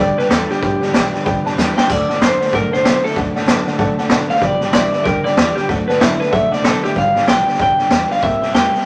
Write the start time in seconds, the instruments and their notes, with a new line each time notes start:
0.00 upright bass C2, clean electric guitar G2 D3 D5, steel-string acoustic guitar F3 B3 D4 G4, upright piano B4 D5 G5
0.17 clean electric guitar G2 D3 B4, steel-string acoustic guitar F3 B3 D4 G4, upright piano B4 D5 G5, snare
0.30 upright bass E2, steel-string acoustic guitar G2 D3 F3 B3 D4, clean electric guitar E3 A4, upright piano B4 D5 G5, snare, hi-hat pedal
0.49 clean electric guitar G2 D3 G4, steel-string acoustic guitar F3 B3 D4 G4, upright piano B4 D5 G5, muted upright bass stroke, snare
0.61 upright bass G1, steel-string acoustic guitar G2 D3 F3 B3 D4 G4, clean electric guitar G2 D3, upright piano B4 D5 G5, kick, snare
0.81 clean electric guitar G2 D3, steel-string acoustic guitar F3 B3 D4 G4, upright piano B4 D5 G5, snare
0.92 upright bass B1, steel-string acoustic guitar G2 D3 F3 B3 D4 G4, clean electric guitar G2 E3, upright piano B4 D5 G5, snare, hi-hat pedal
1.12 clean electric guitar G2 D3, steel-string acoustic guitar B3 D4 G4, upright piano B4 D5 G5, snare
1.16 steel-string acoustic guitar F3
1.24 upright bass C2, clean electric guitar G2 D3, steel-string acoustic guitar F3 B3, upright piano B4 D5 G5, kick, snare
1.28 steel-string acoustic guitar D4 G4
1.44 clean electric guitar G2 D3, steel-string acoustic guitar F3 B3 D4 G4, upright piano B4 D5 A5, muted upright bass stroke, snare
1.57 upright bass E2, steel-string acoustic guitar G2 D3 F3 B3 D4 G4, clean electric guitar G2 E3, upright piano B4 D5 G5, snare, hi-hat pedal
1.76 clean electric guitar G2 D3 G5, steel-string acoustic guitar F3 D4 G4, upright piano B4 D5 G5, muted upright bass stroke, snare
1.89 upright bass D2, clean electric guitar D3 A3 D5, steel-string acoustic guitar D3 F#3 C4 D4 A4, upright piano A4 D5 F#5, kick, snare, splash
2.08 clean electric guitar D3 A3, steel-string acoustic guitar C4 D4 A4, upright piano A4 D5 F#5, snare
2.20 upright bass F#2, steel-string acoustic guitar D3 F#3 C4 D4 A4, clean electric guitar D3 C5, upright piano A4 F#5, snare, hi-hat pedal
2.40 clean electric guitar D3 A3, steel-string acoustic guitar D4 A4, upright piano A4 D5 F#5, muted upright bass stroke, snare
2.47 snare
2.52 upright bass G2, clean electric guitar D3 A3 A#4, steel-string acoustic guitar F#3 C4 D4 A4, upright piano A4 D5 F#5, kick, snare
2.71 clean electric guitar D3 A3 C5, steel-string acoustic guitar C4 D4 A4, upright piano A4 D5 F#5, snare
2.84 upright bass B2, steel-string acoustic guitar D3 F#3 C4 D4 A4, clean electric guitar D3 B3, upright piano D5 F#5, snare, hi-hat pedal
3.03 clean electric guitar D3 A3 A4, steel-string acoustic guitar C4 D4 A4, upright piano A4 D5 E5, muted upright bass stroke, snare
3.11 snare
3.15 upright bass D2, steel-string acoustic guitar D3 F#3 C4 D4 A4, clean electric guitar D3 A3, upright piano A4 D5 F#5, kick, snare
3.34 clean electric guitar D3 A3, steel-string acoustic guitar C4 D4 A4, upright piano A4 D5 F#5, snare
3.46 upright bass F#2, steel-string acoustic guitar D3 F#3 C4 D4 A4, clean electric guitar D3 B3, upright piano A4 D5 F#5, snare, hi-hat pedal
3.66 clean electric guitar D3 A3, steel-string acoustic guitar C4 D4 A4, upright piano A4 D5 F#5, muted upright bass stroke, snare
3.78 upright bass G2, clean electric guitar D3 A3, steel-string acoustic guitar F#3 C4 D4 A4, upright piano A4 D5 F#5, kick, snare
3.98 clean electric guitar D3 A3, steel-string acoustic guitar C4 D4 A4, upright piano A4 D5 F#5, muted upright bass stroke, snare
4.09 upright bass B2, steel-string acoustic guitar D3 F#3 C4 D4 A4, clean electric guitar D3 B3, upright piano A4 D5 F#5, snare, hi-hat pedal
4.29 clean electric guitar D3 A3 F5, steel-string acoustic guitar C4 D4 A4, upright piano A4 D5 F#5, muted upright bass stroke, snare
4.35 snare
4.41 upright bass G1, steel-string acoustic guitar G2 D3 F3 B3 D4 G4, clean electric guitar G2 D3 D5, upright piano B4 D5 G5, kick, snare
4.61 clean electric guitar G2 D3, steel-string acoustic guitar F3 B3 D4 G4, upright piano B4 D5 G5, muted upright bass stroke, snare
4.73 upright bass B1, steel-string acoustic guitar G2 D3 F3 B3 D4 G4, clean electric guitar G2 E3 D5, upright piano B4 D5 E5, snare, hi-hat pedal
4.93 clean electric guitar G2 D3, steel-string acoustic guitar F3 B3 D4 G4, upright piano B4 D5 E5, snare
5.04 upright bass C2, clean electric guitar G2 D3 A#4, steel-string acoustic guitar F3 B3, upright piano B4 D5 G5, kick, snare
5.08 steel-string acoustic guitar D4 G4
5.24 clean electric guitar G2 D3 D5, steel-string acoustic guitar F3 B3 D4 G4, upright piano B4 D5 G5, snare
5.37 upright bass E2, steel-string acoustic guitar G2 D3 F3 B3 D4 G4, clean electric guitar G2 E3, upright piano B4 D5 G5, snare, hi-hat pedal
5.55 clean electric guitar G2 D3 G4, steel-string acoustic guitar B3 D4, upright piano B4 D5 G5, snare
5.60 steel-string acoustic guitar F3
5.68 upright bass D2, steel-string acoustic guitar D3 F#3 C4 D4 A4, clean electric guitar D3 A3, upright piano A4 D5 F#5, kick, snare
5.88 clean electric guitar D3 A3 B4, steel-string acoustic guitar C4 D4 A4, upright piano A4 D5 F#5, snare
5.99 upright bass F#2, clean electric guitar D3 E4, steel-string acoustic guitar D3 F#3 C4 D4 A4, upright piano A4 F#5, snare, hi-hat pedal
6.19 clean electric guitar D3 A3 B4, steel-string acoustic guitar D4 A4, upright piano A4 D5 E5, muted upright bass stroke, snare
6.23 steel-string acoustic guitar C4
6.31 upright bass G2, steel-string acoustic guitar F#3 C4 D4, clean electric guitar A3 E5, upright piano A4 D5 F#5, kick, snare
6.35 steel-string acoustic guitar A4
6.50 clean electric guitar D3 A3 D5, steel-string acoustic guitar C4 D4 A4, upright piano A4 D5 F#5, muted upright bass stroke, snare
6.62 upright bass B2, steel-string acoustic guitar D3 F#3 C4 D4 A4, clean electric guitar D3 A4, upright piano A4 D5 F#5, snare, hi-hat pedal
6.82 clean electric guitar D3 A3 G4, steel-string acoustic guitar C4 D4 A4, upright piano A4 D5 E5, muted upright bass stroke, snare
6.94 upright bass G1, steel-string acoustic guitar G2 D3 F3 B3 F4 G4, clean electric guitar G2 D3 F5, upright piano B4 D5 G5, kick, snare
7.13 clean electric guitar G2 D3, steel-string acoustic guitar F3 B3 F4 G4, upright piano B4 D5 G5, snare
7.26 upright bass B1, steel-string acoustic guitar G2 D3 F3 B3 G4, clean electric guitar G2 E3 G5, upright piano B4 D5 G5, snare, hi-hat pedal
7.46 clean electric guitar G2 D3, steel-string acoustic guitar F3 B3 F4 G4, upright piano B4 D5 G5, snare
7.54 upright piano B4, snare
7.58 upright bass C2, clean electric guitar D3 G5, steel-string acoustic guitar F3, upright piano D5 G5, kick, snare
7.77 clean electric guitar G2 D3, steel-string acoustic guitar F3 B3 F4 G4, upright piano B4 D5 G5, muted upright bass stroke, snare
7.90 upright bass E2, steel-string acoustic guitar G2 D3 F3 B3 F4 G4, clean electric guitar G2 E3, upright piano B4 D5 G5, snare, hi-hat pedal
8.09 clean electric guitar G2 D3 F5, steel-string acoustic guitar F3 B3 F4 G4, upright piano B4 D5 G5, snare
8.17 snare
8.21 upright bass C2, clean electric guitar C3 G3 E5, steel-string acoustic guitar C3 G3 A#3 E4 G4, upright piano C5 E5 G5, kick, snare
8.41 clean electric guitar C3 G3, steel-string acoustic guitar A#3 E4 G4, upright piano C5 E5 G5, snare
8.53 upright bass E2, steel-string acoustic guitar C3 G3 A#3 E4 G4, clean electric guitar C3 A3 G5, upright piano C5 G5, snare, hi-hat pedal
8.72 clean electric guitar C3 G3, steel-string acoustic guitar A#3 E4 G4, upright piano C5 E5 G5, muted upright bass stroke, snare
8.81 snare